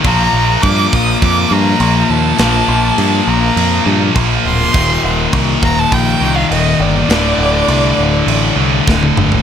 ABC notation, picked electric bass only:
X:1
M:4/4
L:1/8
Q:1/4=102
K:Bb
V:1 name="Picked electric bass" clef=bass
B,,, B,,, G,, B,,, F,, G,, B,,, E,, | B,,, B,,, G,, B,,, F,, G,, B,,, D,,, | E,,, E,,, C,, E,,, B,,, C,, E,,, G,,, | D,,, D,,, C,, D,,, A,,, C,, D,,, G,,, |]